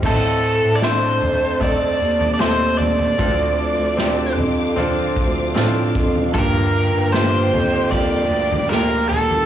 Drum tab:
CC |x---------------|----------------|----------------|
SD |----o-------o---|----o-------o---|----o-------o---|
FT |o-----o-o--o--oo|o-----o-o-----oo|o-----o-o--o--oo|
BD |o-------o-------|o---------o---o-|o-------o-------|